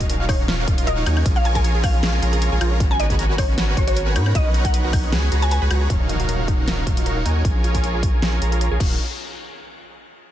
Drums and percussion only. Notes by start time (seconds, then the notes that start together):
0.00 kick, closed hi-hat
0.10 closed hi-hat
0.29 kick, open hi-hat, high woodblock
0.48 snare, closed hi-hat
0.68 kick, closed hi-hat
0.78 closed hi-hat
0.87 closed hi-hat
1.06 closed hi-hat, high woodblock
1.17 high woodblock
1.26 kick, closed hi-hat, ride
1.45 closed hi-hat
1.55 kick, closed hi-hat
1.64 closed hi-hat
1.84 kick, open hi-hat, high woodblock
2.03 snare, closed hi-hat
2.23 closed hi-hat
2.33 closed hi-hat
2.42 closed hi-hat
2.61 closed hi-hat, high woodblock
2.80 kick, closed hi-hat, ride
3.00 closed hi-hat
3.10 kick, closed hi-hat
3.19 closed hi-hat
3.38 kick, open hi-hat, high woodblock
3.58 snare, closed hi-hat
3.77 kick, closed hi-hat
3.88 closed hi-hat
3.97 closed hi-hat
4.16 closed hi-hat, high woodblock
4.26 high woodblock
4.35 kick, closed hi-hat, ride
4.54 closed hi-hat
4.65 kick, closed hi-hat
4.74 closed hi-hat
4.93 kick, open hi-hat, high woodblock
5.12 snare, closed hi-hat
5.32 closed hi-hat
5.42 closed hi-hat
5.51 closed hi-hat
5.71 closed hi-hat, high woodblock
5.90 kick, closed hi-hat
6.09 closed hi-hat
6.20 closed hi-hat
6.29 closed hi-hat
6.48 kick, closed hi-hat
6.68 snare, closed hi-hat
6.87 kick, closed hi-hat
6.97 closed hi-hat
7.06 closed hi-hat
7.26 closed hi-hat
7.45 kick, closed hi-hat
7.64 closed hi-hat
7.74 kick, closed hi-hat
7.84 closed hi-hat
8.03 kick, closed hi-hat
8.22 snare, closed hi-hat
8.42 closed hi-hat
8.52 closed hi-hat
8.61 closed hi-hat
8.80 kick, crash